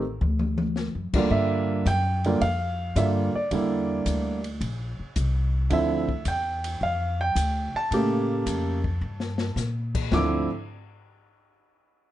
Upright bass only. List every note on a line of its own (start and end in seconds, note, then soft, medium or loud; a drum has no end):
0.00 0.17 A1 medium
0.21 0.90 D2 medium
0.95 1.12 F#2 medium
1.13 1.30 D2 medium
1.30 1.84 G2 medium
1.86 2.39 F#2 medium
2.41 2.94 F2 medium
2.96 3.31 G2 medium
3.35 muted upright bass stroke soft
3.51 4.04 E2 medium
4.06 4.59 D2 medium
4.61 4.96 A#1 medium
5.00 muted upright bass stroke soft
5.16 5.69 C2 medium
5.71 6.24 D2 medium
6.26 6.79 E2 medium
6.81 7.34 F2 medium
7.35 7.71 D2 medium
7.74 muted upright bass stroke soft
7.91 8.45 A2 medium
8.46 9.00 F2 medium
9.01 9.55 G2 medium
9.56 10.10 A#2 medium
10.11 10.47 D2 medium